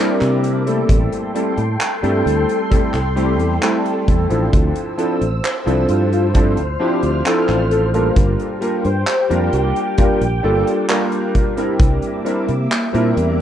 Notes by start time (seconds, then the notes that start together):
Already playing: G3 A#3 E5 D6
0.00 C4 D4 E4 A#4
0.21 C3, clap, closed hi-hat
0.44 closed hi-hat
0.66 G3 A3 C4 E4 A4, closed hi-hat
0.89 A1 A4 G5 C6, kick, closed hi-hat
1.12 closed hi-hat
1.34 G3 A3 C4 E4 A4, closed hi-hat
1.57 A2, closed hi-hat
1.81 clap, closed hi-hat
2.02 G2 G3 A3 C4 E4 A4, closed hi-hat
2.26 D2, closed hi-hat
2.49 closed hi-hat
2.70 G3 A3 C4 E4 A4, kick, closed hi-hat
2.94 C2, clap, closed hi-hat
3.16 G3 A3 C4 E4 G4, closed hi-hat
3.39 E2, closed hi-hat
3.61 G3 A3 C4 E4 A4, clap, closed hi-hat
3.86 closed hi-hat
4.08 E2, kick, closed hi-hat
4.29 A1 F3 C4 D4 E4 A4, closed hi-hat
4.53 D2 C5 E6, kick, closed hi-hat
4.76 closed hi-hat
4.97 F3 C4 D4 E4 A4, closed hi-hat
5.21 A1, closed hi-hat
5.44 clap, closed hi-hat
5.66 C2 F3 C4 D4 E4 A4, closed hi-hat
5.89 G2 F4, closed hi-hat
6.12 F4, closed hi-hat
6.34 F3 C4 D4 E4 A4 F6, kick, closed hi-hat
6.57 D2, closed hi-hat
6.79 F3 C4 D4 E4 G4
7.03 D2, closed hi-hat
7.25 F3 C4 D4 E4 A4, clap, closed hi-hat
7.49 A1, clap, closed hi-hat
7.71 A4, closed hi-hat
7.93 G3 A#3 D4 F4 A4 A#4, closed hi-hat
8.16 G1 G4 G5, kick, closed hi-hat
8.40 closed hi-hat
8.61 G3 A#3 D4 F4 A#4, closed hi-hat
8.85 G2 C5, closed hi-hat
9.07 clap, closed hi-hat
9.29 F2 G3 A#3 D4 F4 A#4, closed hi-hat
9.53 C2 G4, closed hi-hat
9.76 closed hi-hat
9.98 G3 A#3 D4 F4 A#4, kick, closed hi-hat
10.21 A#1, closed hi-hat
10.43 G1 G3 A#3 D4 F4 A4
10.67 closed hi-hat
10.88 G3 A#3 D4 F4 A#4, clap, closed hi-hat
11.12 closed hi-hat
11.35 kick, closed hi-hat
11.57 G3 C4 D4 E4 A#4, closed hi-hat
11.80 C2 A#3 E5 D6, kick, closed hi-hat
12.02 closed hi-hat
12.25 G3 C4 D4 E4 A#4, closed hi-hat
12.48 C3, closed hi-hat
12.71 clap, closed hi-hat
12.93 A#2 G3 C4 D4 E4 A#4, closed hi-hat
13.17 E2, closed hi-hat